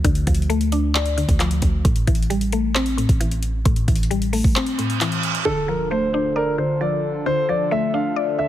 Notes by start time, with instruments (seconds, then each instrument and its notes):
Already playing: synth pluck F3 D5
0.05 808-style bass D2, synth pluck D3, kick, closed hi-hat
0.15 closed hi-hat
0.27 808-style bass D2, synth pluck F3, kick, closed hi-hat
0.35 closed hi-hat
0.42 closed hi-hat
0.50 synth pluck A3, closed hi-hat
0.61 closed hi-hat
0.72 synth pluck D4, closed hi-hat
0.95 synth pluck D5, clap, closed hi-hat
1.06 closed hi-hat
1.17 synth pluck D3, closed hi-hat
1.29 808-style bass D2, kick, closed hi-hat
1.39 synth pluck F3, clap, closed hi-hat
1.51 closed hi-hat
1.62 808-style bass D2, kick, closed hi-hat
1.85 808-style bass A1, synth pluck A2, kick, closed hi-hat
1.96 closed hi-hat
2.07 808-style bass A1, synth pluck E3, kick, closed hi-hat
2.15 closed hi-hat
2.22 closed hi-hat
2.30 synth pluck G3, closed hi-hat
2.41 closed hi-hat
2.52 synth pluck A3, closed hi-hat
2.75 synth pluck C4, clap, closed hi-hat
2.86 closed hi-hat
2.97 synth pluck A2, closed hi-hat
3.09 808-style bass A1, kick, closed hi-hat
3.20 synth pluck E3, closed hi-hat
3.31 closed hi-hat
3.43 closed hi-hat
3.65 808-style bass A1, synth pluck A2, kick, closed hi-hat
3.76 closed hi-hat
3.88 808-style bass A1, synth pluck E3, kick, closed hi-hat
3.96 closed hi-hat
4.03 closed hi-hat
4.11 synth pluck G3, closed hi-hat
4.22 closed hi-hat
4.33 synth pluck A3, open hi-hat
4.44 808-style bass A1, kick
4.56 synth pluck C4, clap, closed hi-hat, reverse cymbal
4.66 closed hi-hat
4.78 synth pluck A2, closed hi-hat
4.90 closed hi-hat
5.01 synth pluck E3, clap, closed hi-hat
5.12 closed hi-hat
5.23 closed hi-hat
5.35 closed hi-hat
5.45 synth pluck D3, analog synth pad D3 D4 F4 A4, grand piano A4, impact
5.68 synth pluck F3, grand piano A#4
5.91 synth pluck A3, grand piano C5
6.13 synth pluck D4, grand piano C5
6.36 grand piano A#4, synth pluck D5
6.58 synth pluck D3, grand piano C5
6.81 synth pluck F3, grand piano D5
7.26 synth pluck D3, grand piano C5
7.49 synth pluck F3, grand piano D5
7.71 synth pluck A3, grand piano E5
7.94 synth pluck D4, grand piano F5
8.16 synth pluck D5
8.38 synth pluck D3, grand piano E5